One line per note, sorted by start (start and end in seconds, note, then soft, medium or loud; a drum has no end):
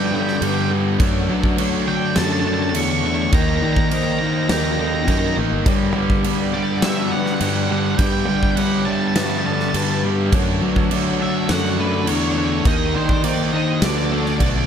0.00 0.11 G2 loud
0.00 0.39 G2 loud
0.00 0.12 D3 loud
0.00 0.13 G3 loud
0.00 0.13 G3 medium
0.00 0.11 B3 medium
0.00 0.96 B3 medium
0.00 1.87 D4 medium
0.00 0.45 F#4 medium
0.00 0.98 G4 medium
0.00 0.13 B4 loud
0.00 3.29 F#5 medium
0.06 0.14 G5 medium
0.12 0.40 G2 medium
0.12 0.41 D3 loud
0.12 0.41 G3 medium
0.12 0.71 B3 medium
0.12 0.42 A4 medium
0.12 0.22 G5 medium
0.22 0.28 G5 medium
0.28 0.36 G5 medium
0.28 snare soft
0.37 0.45 G5 medium
0.41 0.69 G2 medium
0.41 0.97 G2 loud
0.41 0.70 D3 loud
0.41 1.00 G3 medium
0.41 0.71 G3 loud
0.41 1.00 B4 medium
0.41 0.53 G5 medium
0.41 crash medium
0.54 0.61 G5 medium
0.61 0.69 G5 medium
0.70 0.98 G2 medium
0.70 0.99 D3 loud
0.70 0.99 G3 loud
0.70 1.01 B3 medium
1.00 1.27 F#2 loud
1.00 2.46 F#2 medium
1.00 1.28 D3 loud
1.00 1.28 A3 loud
1.00 3.31 D4 medium
1.00 1.30 D4 loud
1.00 3.31 C#5 medium
1.00 1.29 C#5 loud
1.00 kick loud
1.00 crash medium
1.29 1.56 D3 loud
1.29 2.18 F#3 loud
1.29 1.57 A3 loud
1.29 1.59 D4 loud
1.29 1.58 B4 medium
1.43 kick medium
1.58 1.86 D3 loud
1.58 2.45 A3 medium
1.58 1.87 A3 loud
1.58 1.88 D4 loud
1.58 2.17 C#5 medium
1.58 crash medium
1.87 2.15 D3 medium
1.87 2.16 A3 medium
1.87 3.36 D4 medium
1.87 2.17 D4 medium
1.87 2.15 G5 loud
2.16 2.74 F#2 loud
2.16 2.44 D3 loud
2.16 2.44 A3 loud
2.16 2.46 D4 loud
2.16 3.33 F#4 medium
2.16 2.45 A4 loud
2.16 2.24 A5 loud
2.16 snare loud
2.16 crash medium
2.24 2.32 A5 medium
2.33 2.40 A5 loud
2.40 2.47 A5 medium
2.45 2.72 D3 medium
2.45 2.74 A3 medium
2.45 3.03 A3 medium
2.45 2.75 D4 loud
2.45 2.75 A4 medium
2.45 2.54 A5 loud
2.54 2.62 A5 medium
2.63 2.69 A5 medium
2.70 2.77 A5 medium
2.74 3.30 E2 loud
2.74 3.03 D3 medium
2.74 3.33 F#3 medium
2.74 3.03 A3 medium
2.74 3.05 D4 loud
2.74 3.33 C#5 medium
2.74 2.83 C#6 loud
2.74 crash medium
2.84 2.91 C#6 medium
2.92 2.99 C#6 medium
2.99 3.06 C#6 medium
3.04 3.31 D3 medium
3.04 3.33 A3 medium
3.04 3.32 A3 loud
3.04 3.34 D4 medium
3.04 3.14 C#6 loud
3.15 3.22 C#6 medium
3.22 3.30 C#6 medium
3.33 3.60 D#2 loud
3.33 3.61 D#3 loud
3.33 4.79 D#3 medium
3.33 3.62 A#3 loud
3.33 3.63 D#4 loud
3.33 3.62 A#4 loud
3.33 5.65 D5 medium
3.33 5.64 G5 medium
3.33 3.42 A#5 loud
3.33 kick loud
3.33 crash medium
3.42 3.49 A#5 medium
3.49 3.56 A#5 medium
3.57 3.65 A#5 medium
3.62 4.51 D#3 loud
3.62 3.90 D#3 medium
3.62 3.91 A#3 medium
3.62 3.92 D#4 loud
3.62 3.91 D5 medium
3.62 3.73 A#5 medium
3.73 3.80 A#5 medium
3.73 kick medium
3.80 3.88 A#5 loud
3.88 4.20 D#3 medium
3.88 4.79 A#3 medium
3.88 4.20 A#3 loud
3.88 4.49 C5 medium
3.88 3.96 A#5 medium
3.88 crash medium
3.93 4.21 D#4 medium
3.93 4.03 A#5 medium
4.03 4.11 A#5 medium
4.12 4.18 A#5 loud
4.19 4.48 D#3 medium
4.19 4.49 A#3 medium
4.19 4.50 D#4 loud
4.19 4.26 A#5 medium
4.27 4.33 A#5 medium
4.34 4.42 A#5 medium
4.43 4.49 A#5 loud
4.49 5.08 D#2 loud
4.49 4.78 D#3 loud
4.49 4.79 A#3 loud
4.49 4.79 D#4 loud
4.49 6.82 G4 medium
4.49 4.79 A#4 medium
4.49 4.57 A#5 medium
4.49 snare loud
4.49 crash medium
4.58 4.64 A#5 loud
4.64 4.72 A#5 medium
4.73 4.80 A#5 medium
4.79 5.07 D#3 medium
4.79 5.36 A#3 medium
4.79 5.07 A#3 medium
4.79 5.08 D#4 medium
4.79 5.08 A4 medium
4.79 4.87 A#5 medium
4.87 4.94 A#5 medium
4.95 5.02 A#5 medium
5.04 5.35 F#2 medium
5.04 5.10 A#5 medium
5.08 5.36 D#3 medium
5.08 5.66 D#3 medium
5.08 5.37 A#3 medium
5.08 5.38 D#4 loud
5.08 5.67 A#4 medium
5.08 5.18 A#5 medium
5.08 kick medium
5.08 crash medium
5.19 5.27 A#5 medium
5.27 5.35 A#5 medium
5.37 5.50 A1 medium
5.37 5.65 D#3 medium
5.37 5.67 A#3 medium
5.37 5.65 A#3 medium
5.37 5.65 D#4 medium
5.52 5.65 G1 medium
5.66 5.94 G2 loud
5.66 5.95 G2 loud
5.66 5.95 D3 loud
5.66 7.12 G3 medium
5.66 5.96 G3 loud
5.66 10.29 B3 medium
5.66 5.96 C#5 medium
5.66 7.97 F#5 medium
5.66 kick loud
5.66 crash medium
5.95 6.24 G2 medium
5.95 6.24 D3 medium
5.95 6.82 G3 loud
5.95 6.26 G3 loud
5.95 6.25 B4 medium
6.10 kick medium
6.24 6.53 G2 loud
6.24 6.53 D3 loud
6.24 6.54 G3 loud
6.24 7.10 B3 medium
6.24 6.83 D5 medium
6.24 crash medium
6.53 6.81 G2 medium
6.53 6.82 D3 medium
6.53 6.83 G3 medium
6.53 8.87 D4 medium
6.53 6.82 D5 medium
6.82 7.38 G2 loud
6.82 7.10 G2 loud
6.82 7.11 D3 loud
6.82 7.12 G3 loud
6.82 9.16 F#4 medium
6.82 7.10 B4 medium
6.82 7.13 E5 medium
6.82 snare loud
6.82 crash medium
7.11 7.39 G2 medium
7.11 7.40 D3 medium
7.11 7.41 G3 medium
7.11 7.69 B3 medium
7.11 7.41 B4 medium
7.11 7.18 F#5 medium
7.19 7.26 F#5 medium
7.26 7.34 F#5 medium
7.26 snare soft
7.34 7.41 F#5 medium
7.41 7.68 G2 medium
7.41 7.96 G2 loud
7.41 7.69 D3 medium
7.41 7.98 G3 medium
7.41 7.70 G3 loud
7.41 8.00 D5 medium
7.41 7.49 F#5 medium
7.41 crash medium
7.49 7.56 F#5 medium
7.57 7.63 F#5 medium
7.64 7.71 F#5 medium
7.70 7.98 G2 medium
7.70 7.99 D3 medium
7.70 7.99 G3 loud
7.70 8.57 B3 medium
7.70 7.79 F#5 medium
7.79 7.86 F#5 medium
7.86 7.94 F#5 medium
7.95 7.98 F#5 medium
7.95 8.06 G5 loud
7.95 crash medium
7.99 8.27 G2 loud
7.99 8.28 D3 loud
7.99 9.45 G3 medium
7.99 8.29 G3 loud
7.99 8.28 B4 loud
7.99 10.31 E5 medium
7.99 kick loud
8.06 8.12 G5 medium
8.12 8.20 G5 medium
8.21 8.28 G5 medium
8.28 8.56 G2 medium
8.28 8.56 D3 medium
8.28 9.16 G3 loud
8.28 8.57 G3 loud
8.28 8.58 D5 medium
8.28 8.36 G5 loud
8.37 8.43 G5 medium
8.43 8.51 G5 medium
8.43 kick medium
8.51 8.56 G5 medium
8.56 8.85 G2 loud
8.56 8.86 D3 medium
8.56 8.87 G3 loud
8.56 9.44 B3 medium
8.56 9.16 C#5 medium
8.56 8.87 F#5 loud
8.56 crash medium
8.85 9.14 G2 medium
8.85 9.15 D3 medium
8.85 9.16 G3 loud
8.85 11.20 D4 medium
8.85 8.92 A5 loud
8.92 9.00 A5 medium
9.00 9.07 A5 loud
9.07 9.15 A5 medium
9.15 9.44 G2 loud
9.15 9.71 G2 loud
9.15 9.45 D3 loud
9.15 9.45 G3 loud
9.15 10.33 F#4 medium
9.15 9.45 B4 loud
9.15 9.23 A5 medium
9.15 snare loud
9.15 crash medium
9.23 9.29 A5 medium
9.30 9.37 A5 loud
9.38 9.46 A5 medium
9.45 9.73 G2 medium
9.45 9.74 D3 medium
9.45 9.75 G3 loud
9.45 10.02 B3 medium
9.45 9.75 A4 medium
9.45 9.53 A5 medium
9.53 9.61 A5 medium
9.60 9.69 A5 medium
9.60 snare soft
9.69 9.76 A5 medium
9.74 10.29 G2 loud
9.74 10.02 G2 medium
9.74 10.03 D3 loud
9.74 10.33 G3 medium
9.74 10.04 G3 loud
9.74 10.33 B4 medium
9.74 9.84 A5 medium
9.74 crash medium
9.84 9.91 A5 medium
9.92 9.99 A5 medium
10.04 10.31 G2 medium
10.04 10.31 D3 medium
10.04 10.32 G3 loud
10.04 10.33 B3 medium
10.32 10.60 F#2 loud
10.32 11.78 F#2 medium
10.32 10.61 D3 loud
10.32 10.62 A3 loud
10.32 12.64 D4 medium
10.32 10.63 D4 loud
10.32 10.62 C#5 loud
10.32 12.64 C#5 medium
10.32 12.64 F#5 loud
10.32 kick loud
10.32 crash medium
10.61 10.90 D3 medium
10.61 11.51 F#3 loud
10.61 10.91 A3 loud
10.61 10.93 D4 loud
10.61 10.91 B4 medium
10.76 kick medium
10.91 11.19 D3 medium
10.91 11.77 A3 medium
10.91 11.20 A3 loud
10.91 11.21 D4 loud
10.91 11.49 C#5 medium
10.91 crash medium
11.20 11.48 D3 medium
11.20 11.49 A3 loud
11.20 12.68 D4 medium
11.20 11.50 D4 loud
11.20 11.48 E5 loud
11.49 12.08 F#2 loud
11.49 11.77 D3 loud
11.49 11.78 A3 loud
11.49 11.79 D4 loud
11.49 12.66 F#4 medium
11.49 11.77 A4 loud
11.49 11.80 F#5 loud
11.49 snare loud
11.49 crash medium
11.78 12.06 D3 medium
11.78 12.35 A3 medium
11.78 12.07 A3 medium
11.78 12.08 D4 medium
11.78 12.08 A4 medium
11.78 12.09 B4 medium
12.07 12.63 E2 loud
12.07 12.35 D3 medium
12.07 12.65 F#3 medium
12.07 12.36 A3 medium
12.07 12.66 D4 medium
12.07 12.37 D4 loud
12.07 12.16 C#5 medium
12.07 crash medium
12.17 12.23 C#5 medium
12.24 12.31 C#5 medium
12.32 12.37 C#5 medium
12.36 12.64 D3 medium
12.36 12.66 A3 medium
12.36 12.64 A3 medium
12.36 12.66 D4 medium
12.36 12.45 C#5 medium
12.47 12.53 C#5 medium
12.53 12.61 C#5 medium
12.61 12.93 D#3 loud
12.61 12.67 C#5 medium
12.65 12.93 D#2 loud
12.65 13.82 D#3 medium
12.65 12.93 A#3 loud
12.65 13.82 D#4 medium
12.65 12.94 D#4 loud
12.65 12.95 A#4 medium
12.65 13.81 D5 medium
12.65 12.95 D#5 loud
12.65 13.82 G5 medium
12.65 kick loud
12.65 crash medium
12.94 13.22 D#3 medium
12.94 13.83 D#3 loud
12.94 13.23 A#3 medium
12.94 13.23 D#4 loud
12.94 13.22 C5 medium
12.94 13.24 D5 medium
13.09 kick medium
13.23 13.51 D#3 medium
13.23 13.52 A#3 loud
13.23 13.83 A#3 medium
13.23 13.52 D#4 loud
13.23 13.82 C5 medium
13.23 13.52 D5 medium
13.23 crash medium
13.52 13.80 D#3 medium
13.52 13.81 A#3 medium
13.52 13.82 D4 medium
13.52 13.81 D#4 medium
13.52 13.82 D#5 medium
13.81 14.40 D2 loud
13.81 14.09 D3 loud
13.81 14.40 D3 medium
13.81 14.10 A3 loud
13.81 14.66 D4 medium
13.81 14.11 D4 loud
13.81 14.11 B4 medium
13.81 14.66 D5 medium
13.81 13.90 D5 medium
13.81 14.66 F#5 medium
13.81 snare loud
13.81 crash medium
13.90 13.98 D5 medium
13.98 14.05 D5 medium
14.05 14.13 D5 medium
14.10 14.39 D3 medium
14.10 14.39 A3 medium
14.10 14.66 A3 medium
14.10 14.40 D4 medium
14.10 14.41 A4 medium
14.10 14.19 D5 medium
14.20 14.27 D5 medium
14.26 14.35 D5 medium
14.26 snare soft
14.36 14.66 D3 medium
14.36 14.42 D5 medium
14.40 14.66 B1 medium
14.40 14.66 D3 medium
14.40 14.66 A3 medium
14.40 14.66 D4 loud
14.40 14.66 B4 medium
14.40 14.50 D5 medium
14.40 kick medium
14.40 crash medium
14.51 14.58 D5 medium
14.58 14.66 D5 medium